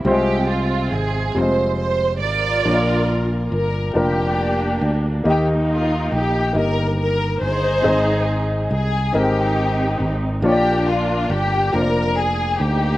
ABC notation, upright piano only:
X:1
M:6/8
L:1/8
Q:3/8=46
K:Bbmix
V:1 name="Upright piano"
[G,A,CFc]2 z [G,A,CFc]2 z | [B,DF_d=d]2 z [B,DFB]2 z | [B,EGe]2 z [B,EGe]2 z | [CEAe]2 z [A,CEB]2 z |
[B,DF_d=d]2 z [B,DFcd]2 z |]
V:2 name="Upright piano" clef=bass
C,3 z3 | B,,3 z3 | E,3 z3 | A,,3 z3 |
B,,3 z3 |]